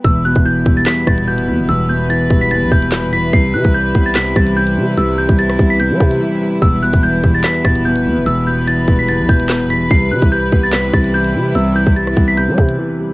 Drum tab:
HH |x--x--x-x--x-x--|x---x-x-x--xx-x-|x--x--x-x--x-x--|x---x-x-x--x----|
CP |--------x-------|------------x---|--------x-------|----------------|
SD |--------o-r-----|------------o---|--------o-r-----|-----r----------|
BD |o--o--o---o-----|------o---o-----|o--o--o---o-----|---o--o---o-----|

HH |x--x--x-x--x-x--|x---x-x-x--xx-x-|x--x--x-x--x-x--|x---x-x-x--x----|
CP |--------x-------|------------x---|--------x-------|----------------|
SD |--------o-r-----|------------o---|--------o-r-----|-----r----------|
BD |o--o--o---o-----|------o---o-----|o--o--o---o-----|---o--o---o-----|